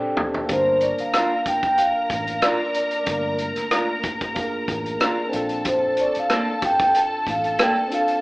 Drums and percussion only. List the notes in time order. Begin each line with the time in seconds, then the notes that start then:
0.17 floor tom
0.34 floor tom
0.49 kick, closed hi-hat
0.81 closed hi-hat
0.98 closed hi-hat
1.13 cross-stick, closed hi-hat
1.46 kick, closed hi-hat
1.63 kick, closed hi-hat
1.78 closed hi-hat
2.10 kick, closed hi-hat
2.27 closed hi-hat
2.42 cross-stick, closed hi-hat
2.74 closed hi-hat
2.91 closed hi-hat
3.06 kick, closed hi-hat
3.39 closed hi-hat
3.56 cross-stick, closed hi-hat
3.71 cross-stick, closed hi-hat
4.03 kick, closed hi-hat
4.21 kick, closed hi-hat
4.36 kick, closed hi-hat
4.68 kick, closed hi-hat
4.86 closed hi-hat
5.00 cross-stick, closed hi-hat
5.33 closed hi-hat
5.49 closed hi-hat
5.65 kick, closed hi-hat
5.97 closed hi-hat
6.15 closed hi-hat
6.30 cross-stick, closed hi-hat
6.62 kick, closed hi-hat
6.80 kick, closed hi-hat
6.95 closed hi-hat
7.27 kick, closed hi-hat
7.44 closed hi-hat
7.59 cross-stick, closed hi-hat
7.92 closed hi-hat
8.08 closed hi-hat